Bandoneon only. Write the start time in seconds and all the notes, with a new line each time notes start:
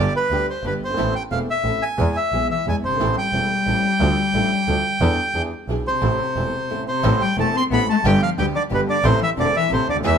Already playing: D5
0.16 B4
0.50 C5
0.67 B4
0.85 C5
1.15 G5
1.31 F5
1.50 E5
1.82 G#5
2.16 E5
2.51 E5
2.69 G#5
2.85 C5
3.18 G5
5.87 C5
6.88 C5
7.22 G5
7.40 A5
7.57 C6
7.73 B5
7.90 A5
8.07 G5
8.23 F5
8.39 G5
8.56 D5
8.74 B4
8.90 D5
9.05 C5
9.23 E5
9.40 D5
9.56 E5
9.73 C5
9.90 D5
10.07 E5